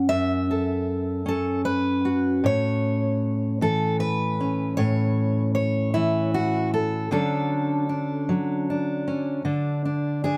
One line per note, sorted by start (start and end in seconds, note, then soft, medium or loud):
0.00 1.25 C#4 medium
0.00 0.12 F#4 medium
0.09 2.43 F#2 medium
0.09 2.05 E5 loud
0.51 1.28 A4 soft
1.26 3.61 C#4 medium
1.26 1.65 A4 loud
1.65 2.44 B4 medium
2.05 3.64 F#4 soft
2.44 4.73 A2 medium
2.44 3.62 C#5 loud
3.61 5.94 E3 medium
3.61 4.00 A4 loud
4.00 4.77 B4 loud
4.40 7.12 C#4 soft
4.77 7.08 A2 medium
4.77 5.54 C#5 loud
5.55 6.33 C#5 medium
5.94 7.11 E3 medium
5.94 7.12 E4 medium
6.34 6.73 F#4 medium
6.74 7.11 A4 medium
7.11 9.41 D3 medium
7.11 8.29 F#3 medium
7.11 9.06 C#4 soft
7.11 7.89 D4 medium
7.11 10.23 A4 medium
7.89 8.68 D4 medium
8.29 9.41 F#3 medium
8.70 9.42 D4 medium
9.08 9.42 C#4 medium
9.45 10.37 D3 medium
9.45 9.84 D4 soft
9.85 10.24 D4 medium
10.24 10.37 D4 medium
10.24 10.37 G#4 medium